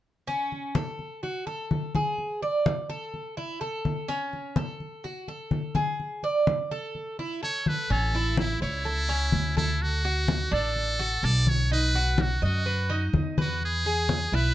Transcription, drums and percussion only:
0, 0, Header, 1, 2, 480
1, 0, Start_track
1, 0, Key_signature, 3, "major"
1, 0, Tempo, 476569
1, 276, Time_signature, 4, 2, 24, 8
1, 14647, End_track
2, 0, Start_track
2, 0, Title_t, "Drums"
2, 284, Note_on_c, 9, 63, 30
2, 384, Note_off_c, 9, 63, 0
2, 525, Note_on_c, 9, 63, 32
2, 625, Note_off_c, 9, 63, 0
2, 756, Note_on_c, 9, 63, 82
2, 857, Note_off_c, 9, 63, 0
2, 997, Note_on_c, 9, 63, 30
2, 1098, Note_off_c, 9, 63, 0
2, 1242, Note_on_c, 9, 63, 31
2, 1343, Note_off_c, 9, 63, 0
2, 1479, Note_on_c, 9, 63, 29
2, 1579, Note_off_c, 9, 63, 0
2, 1721, Note_on_c, 9, 63, 74
2, 1822, Note_off_c, 9, 63, 0
2, 1960, Note_on_c, 9, 63, 68
2, 2061, Note_off_c, 9, 63, 0
2, 2199, Note_on_c, 9, 63, 31
2, 2300, Note_off_c, 9, 63, 0
2, 2442, Note_on_c, 9, 63, 31
2, 2543, Note_off_c, 9, 63, 0
2, 2679, Note_on_c, 9, 63, 88
2, 2779, Note_off_c, 9, 63, 0
2, 2916, Note_on_c, 9, 63, 31
2, 3016, Note_off_c, 9, 63, 0
2, 3160, Note_on_c, 9, 63, 32
2, 3261, Note_off_c, 9, 63, 0
2, 3401, Note_on_c, 9, 63, 31
2, 3501, Note_off_c, 9, 63, 0
2, 3641, Note_on_c, 9, 63, 29
2, 3741, Note_off_c, 9, 63, 0
2, 3879, Note_on_c, 9, 63, 72
2, 3980, Note_off_c, 9, 63, 0
2, 4121, Note_on_c, 9, 63, 31
2, 4222, Note_off_c, 9, 63, 0
2, 4364, Note_on_c, 9, 63, 34
2, 4464, Note_off_c, 9, 63, 0
2, 4592, Note_on_c, 9, 63, 85
2, 4693, Note_off_c, 9, 63, 0
2, 4836, Note_on_c, 9, 63, 31
2, 4937, Note_off_c, 9, 63, 0
2, 5084, Note_on_c, 9, 63, 32
2, 5185, Note_off_c, 9, 63, 0
2, 5316, Note_on_c, 9, 63, 32
2, 5417, Note_off_c, 9, 63, 0
2, 5549, Note_on_c, 9, 63, 72
2, 5650, Note_off_c, 9, 63, 0
2, 5789, Note_on_c, 9, 63, 72
2, 5889, Note_off_c, 9, 63, 0
2, 6039, Note_on_c, 9, 63, 32
2, 6140, Note_off_c, 9, 63, 0
2, 6274, Note_on_c, 9, 63, 33
2, 6375, Note_off_c, 9, 63, 0
2, 6518, Note_on_c, 9, 63, 86
2, 6619, Note_off_c, 9, 63, 0
2, 6760, Note_on_c, 9, 63, 32
2, 6861, Note_off_c, 9, 63, 0
2, 6999, Note_on_c, 9, 63, 32
2, 7100, Note_off_c, 9, 63, 0
2, 7241, Note_on_c, 9, 63, 31
2, 7341, Note_off_c, 9, 63, 0
2, 7486, Note_on_c, 9, 63, 29
2, 7587, Note_off_c, 9, 63, 0
2, 7716, Note_on_c, 9, 63, 68
2, 7817, Note_off_c, 9, 63, 0
2, 7962, Note_on_c, 9, 63, 31
2, 8063, Note_off_c, 9, 63, 0
2, 8196, Note_on_c, 9, 63, 34
2, 8297, Note_off_c, 9, 63, 0
2, 8434, Note_on_c, 9, 63, 88
2, 8535, Note_off_c, 9, 63, 0
2, 8681, Note_on_c, 9, 63, 34
2, 8781, Note_off_c, 9, 63, 0
2, 8915, Note_on_c, 9, 63, 33
2, 9015, Note_off_c, 9, 63, 0
2, 9154, Note_on_c, 9, 63, 32
2, 9255, Note_off_c, 9, 63, 0
2, 9391, Note_on_c, 9, 63, 77
2, 9492, Note_off_c, 9, 63, 0
2, 9644, Note_on_c, 9, 63, 74
2, 9744, Note_off_c, 9, 63, 0
2, 9882, Note_on_c, 9, 63, 33
2, 9982, Note_off_c, 9, 63, 0
2, 10120, Note_on_c, 9, 63, 31
2, 10220, Note_off_c, 9, 63, 0
2, 10357, Note_on_c, 9, 63, 89
2, 10458, Note_off_c, 9, 63, 0
2, 10597, Note_on_c, 9, 63, 33
2, 10697, Note_off_c, 9, 63, 0
2, 10835, Note_on_c, 9, 63, 32
2, 10935, Note_off_c, 9, 63, 0
2, 11077, Note_on_c, 9, 63, 30
2, 11178, Note_off_c, 9, 63, 0
2, 11310, Note_on_c, 9, 63, 30
2, 11411, Note_off_c, 9, 63, 0
2, 11551, Note_on_c, 9, 63, 73
2, 11651, Note_off_c, 9, 63, 0
2, 11795, Note_on_c, 9, 63, 31
2, 11895, Note_off_c, 9, 63, 0
2, 12028, Note_on_c, 9, 63, 33
2, 12128, Note_off_c, 9, 63, 0
2, 12268, Note_on_c, 9, 63, 92
2, 12368, Note_off_c, 9, 63, 0
2, 12506, Note_on_c, 9, 63, 32
2, 12607, Note_off_c, 9, 63, 0
2, 12751, Note_on_c, 9, 63, 34
2, 12852, Note_off_c, 9, 63, 0
2, 12994, Note_on_c, 9, 63, 33
2, 13095, Note_off_c, 9, 63, 0
2, 13230, Note_on_c, 9, 63, 76
2, 13331, Note_off_c, 9, 63, 0
2, 13473, Note_on_c, 9, 63, 72
2, 13573, Note_off_c, 9, 63, 0
2, 13714, Note_on_c, 9, 63, 31
2, 13815, Note_off_c, 9, 63, 0
2, 13954, Note_on_c, 9, 63, 33
2, 14055, Note_off_c, 9, 63, 0
2, 14191, Note_on_c, 9, 63, 86
2, 14292, Note_off_c, 9, 63, 0
2, 14434, Note_on_c, 9, 63, 33
2, 14535, Note_off_c, 9, 63, 0
2, 14647, End_track
0, 0, End_of_file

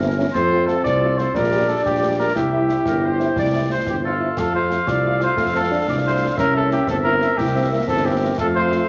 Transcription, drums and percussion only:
0, 0, Header, 1, 2, 480
1, 0, Start_track
1, 0, Key_signature, -1, "major"
1, 0, Tempo, 335196
1, 487, Time_signature, 6, 3, 24, 8
1, 12725, End_track
2, 0, Start_track
2, 0, Title_t, "Drums"
2, 493, Note_on_c, 9, 35, 81
2, 493, Note_on_c, 9, 38, 69
2, 493, Note_on_c, 9, 49, 30
2, 636, Note_off_c, 9, 35, 0
2, 636, Note_off_c, 9, 38, 0
2, 636, Note_off_c, 9, 49, 0
2, 973, Note_on_c, 9, 38, 50
2, 1116, Note_off_c, 9, 38, 0
2, 1216, Note_on_c, 9, 35, 73
2, 1216, Note_on_c, 9, 38, 65
2, 1360, Note_off_c, 9, 35, 0
2, 1360, Note_off_c, 9, 38, 0
2, 1695, Note_on_c, 9, 38, 49
2, 1838, Note_off_c, 9, 38, 0
2, 1930, Note_on_c, 9, 35, 76
2, 1930, Note_on_c, 9, 38, 57
2, 2074, Note_off_c, 9, 35, 0
2, 2074, Note_off_c, 9, 38, 0
2, 2659, Note_on_c, 9, 35, 67
2, 2659, Note_on_c, 9, 38, 58
2, 2802, Note_off_c, 9, 35, 0
2, 2802, Note_off_c, 9, 38, 0
2, 3373, Note_on_c, 9, 35, 76
2, 3373, Note_on_c, 9, 38, 66
2, 3516, Note_off_c, 9, 35, 0
2, 3516, Note_off_c, 9, 38, 0
2, 3852, Note_on_c, 9, 38, 47
2, 3995, Note_off_c, 9, 38, 0
2, 4089, Note_on_c, 9, 35, 66
2, 4089, Note_on_c, 9, 38, 61
2, 4232, Note_off_c, 9, 35, 0
2, 4232, Note_off_c, 9, 38, 0
2, 4579, Note_on_c, 9, 38, 49
2, 4723, Note_off_c, 9, 38, 0
2, 4814, Note_on_c, 9, 35, 70
2, 4814, Note_on_c, 9, 38, 57
2, 4957, Note_off_c, 9, 35, 0
2, 4957, Note_off_c, 9, 38, 0
2, 5535, Note_on_c, 9, 35, 69
2, 5535, Note_on_c, 9, 38, 64
2, 5678, Note_off_c, 9, 35, 0
2, 5678, Note_off_c, 9, 38, 0
2, 6257, Note_on_c, 9, 35, 72
2, 6257, Note_on_c, 9, 38, 67
2, 6257, Note_on_c, 9, 49, 38
2, 6400, Note_off_c, 9, 35, 0
2, 6400, Note_off_c, 9, 38, 0
2, 6400, Note_off_c, 9, 49, 0
2, 6739, Note_on_c, 9, 38, 47
2, 6882, Note_off_c, 9, 38, 0
2, 6979, Note_on_c, 9, 35, 68
2, 6979, Note_on_c, 9, 38, 67
2, 7122, Note_off_c, 9, 35, 0
2, 7122, Note_off_c, 9, 38, 0
2, 7451, Note_on_c, 9, 38, 47
2, 7594, Note_off_c, 9, 38, 0
2, 7692, Note_on_c, 9, 35, 75
2, 7692, Note_on_c, 9, 38, 56
2, 7835, Note_off_c, 9, 35, 0
2, 7835, Note_off_c, 9, 38, 0
2, 8419, Note_on_c, 9, 35, 68
2, 8419, Note_on_c, 9, 38, 58
2, 8562, Note_off_c, 9, 35, 0
2, 8562, Note_off_c, 9, 38, 0
2, 9130, Note_on_c, 9, 35, 74
2, 9130, Note_on_c, 9, 38, 64
2, 9273, Note_off_c, 9, 35, 0
2, 9273, Note_off_c, 9, 38, 0
2, 9608, Note_on_c, 9, 38, 51
2, 9751, Note_off_c, 9, 38, 0
2, 9843, Note_on_c, 9, 35, 73
2, 9843, Note_on_c, 9, 38, 65
2, 9986, Note_off_c, 9, 35, 0
2, 9986, Note_off_c, 9, 38, 0
2, 10329, Note_on_c, 9, 38, 48
2, 10473, Note_off_c, 9, 38, 0
2, 10566, Note_on_c, 9, 35, 77
2, 10566, Note_on_c, 9, 38, 59
2, 10709, Note_off_c, 9, 35, 0
2, 10709, Note_off_c, 9, 38, 0
2, 11284, Note_on_c, 9, 35, 73
2, 11284, Note_on_c, 9, 38, 60
2, 11427, Note_off_c, 9, 35, 0
2, 11427, Note_off_c, 9, 38, 0
2, 11999, Note_on_c, 9, 35, 75
2, 11999, Note_on_c, 9, 38, 70
2, 11999, Note_on_c, 9, 49, 30
2, 12142, Note_off_c, 9, 35, 0
2, 12142, Note_off_c, 9, 38, 0
2, 12142, Note_off_c, 9, 49, 0
2, 12485, Note_on_c, 9, 38, 51
2, 12629, Note_off_c, 9, 38, 0
2, 12725, End_track
0, 0, End_of_file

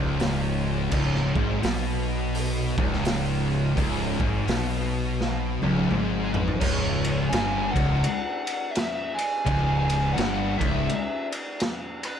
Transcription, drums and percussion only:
0, 0, Header, 1, 2, 480
1, 0, Start_track
1, 0, Key_signature, 4, "minor"
1, 0, Tempo, 710900
1, 631, Time_signature, 4, 2, 24, 8
1, 8235, End_track
2, 0, Start_track
2, 0, Title_t, "Drums"
2, 133, Note_on_c, 9, 46, 61
2, 144, Note_on_c, 9, 38, 117
2, 200, Note_off_c, 9, 46, 0
2, 211, Note_off_c, 9, 38, 0
2, 617, Note_on_c, 9, 49, 98
2, 623, Note_on_c, 9, 36, 103
2, 685, Note_off_c, 9, 49, 0
2, 691, Note_off_c, 9, 36, 0
2, 776, Note_on_c, 9, 38, 33
2, 843, Note_off_c, 9, 38, 0
2, 915, Note_on_c, 9, 36, 113
2, 983, Note_off_c, 9, 36, 0
2, 1101, Note_on_c, 9, 46, 69
2, 1112, Note_on_c, 9, 38, 112
2, 1169, Note_off_c, 9, 46, 0
2, 1180, Note_off_c, 9, 38, 0
2, 1584, Note_on_c, 9, 46, 64
2, 1652, Note_off_c, 9, 46, 0
2, 1876, Note_on_c, 9, 36, 123
2, 1943, Note_off_c, 9, 36, 0
2, 1979, Note_on_c, 9, 38, 31
2, 2047, Note_off_c, 9, 38, 0
2, 2060, Note_on_c, 9, 46, 67
2, 2071, Note_on_c, 9, 38, 117
2, 2127, Note_off_c, 9, 46, 0
2, 2138, Note_off_c, 9, 38, 0
2, 2546, Note_on_c, 9, 36, 100
2, 2549, Note_on_c, 9, 46, 66
2, 2614, Note_off_c, 9, 36, 0
2, 2616, Note_off_c, 9, 46, 0
2, 2836, Note_on_c, 9, 36, 112
2, 2903, Note_off_c, 9, 36, 0
2, 3024, Note_on_c, 9, 46, 74
2, 3034, Note_on_c, 9, 38, 121
2, 3091, Note_off_c, 9, 46, 0
2, 3102, Note_off_c, 9, 38, 0
2, 3517, Note_on_c, 9, 38, 64
2, 3584, Note_off_c, 9, 38, 0
2, 3796, Note_on_c, 9, 48, 75
2, 3863, Note_off_c, 9, 48, 0
2, 3893, Note_on_c, 9, 48, 69
2, 3961, Note_off_c, 9, 48, 0
2, 3988, Note_on_c, 9, 47, 89
2, 4056, Note_off_c, 9, 47, 0
2, 4282, Note_on_c, 9, 43, 113
2, 4349, Note_off_c, 9, 43, 0
2, 4373, Note_on_c, 9, 43, 96
2, 4440, Note_off_c, 9, 43, 0
2, 4464, Note_on_c, 9, 49, 117
2, 4468, Note_on_c, 9, 36, 113
2, 4532, Note_off_c, 9, 49, 0
2, 4535, Note_off_c, 9, 36, 0
2, 4757, Note_on_c, 9, 51, 85
2, 4824, Note_off_c, 9, 51, 0
2, 4946, Note_on_c, 9, 51, 115
2, 4957, Note_on_c, 9, 38, 127
2, 5014, Note_off_c, 9, 51, 0
2, 5025, Note_off_c, 9, 38, 0
2, 5238, Note_on_c, 9, 36, 111
2, 5241, Note_on_c, 9, 51, 76
2, 5306, Note_off_c, 9, 36, 0
2, 5308, Note_off_c, 9, 51, 0
2, 5427, Note_on_c, 9, 51, 113
2, 5494, Note_off_c, 9, 51, 0
2, 5719, Note_on_c, 9, 51, 91
2, 5787, Note_off_c, 9, 51, 0
2, 5910, Note_on_c, 9, 51, 115
2, 5921, Note_on_c, 9, 38, 113
2, 5978, Note_off_c, 9, 51, 0
2, 5989, Note_off_c, 9, 38, 0
2, 6202, Note_on_c, 9, 51, 92
2, 6269, Note_off_c, 9, 51, 0
2, 6391, Note_on_c, 9, 36, 109
2, 6392, Note_on_c, 9, 51, 114
2, 6458, Note_off_c, 9, 36, 0
2, 6459, Note_off_c, 9, 51, 0
2, 6682, Note_on_c, 9, 51, 85
2, 6749, Note_off_c, 9, 51, 0
2, 6871, Note_on_c, 9, 51, 109
2, 6882, Note_on_c, 9, 38, 122
2, 6939, Note_off_c, 9, 51, 0
2, 6949, Note_off_c, 9, 38, 0
2, 7164, Note_on_c, 9, 36, 107
2, 7165, Note_on_c, 9, 51, 78
2, 7231, Note_off_c, 9, 36, 0
2, 7232, Note_off_c, 9, 51, 0
2, 7356, Note_on_c, 9, 51, 97
2, 7423, Note_off_c, 9, 51, 0
2, 7646, Note_on_c, 9, 51, 84
2, 7713, Note_off_c, 9, 51, 0
2, 7833, Note_on_c, 9, 51, 101
2, 7843, Note_on_c, 9, 38, 106
2, 7900, Note_off_c, 9, 51, 0
2, 7911, Note_off_c, 9, 38, 0
2, 8124, Note_on_c, 9, 51, 77
2, 8192, Note_off_c, 9, 51, 0
2, 8235, End_track
0, 0, End_of_file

